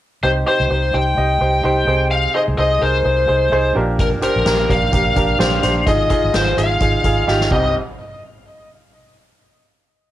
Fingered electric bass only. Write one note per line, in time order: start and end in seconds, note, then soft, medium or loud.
0.23 0.43 C2 medium
0.60 0.68 C2 medium
0.70 0.90 C2 medium
0.94 1.13 C2 medium
1.17 1.37 C2 medium
1.41 1.60 C2 medium
1.64 1.84 C2 medium
1.87 2.26 C2 medium
2.48 2.56 C2 medium
2.58 2.77 C2 medium
2.82 3.01 C2 medium
3.05 3.25 C2 medium
3.29 3.48 C2 medium
3.52 3.71 C2 medium
3.76 4.14 A#1 medium
4.36 4.44 A#1 medium
4.46 4.65 A#1 medium
4.70 4.89 A#1 medium
4.93 5.12 A#1 medium
5.16 5.36 A#1 medium
5.40 5.59 A#1 medium
5.63 5.83 A#1 medium
5.86 6.06 G#1 loud
6.23 6.32 G#1 medium
6.34 6.53 G#1 medium
6.57 6.76 G#1 medium
6.81 7.00 G#1 medium
7.04 7.23 G#1 medium
7.27 7.47 G#1 medium
7.51 7.73 C2 medium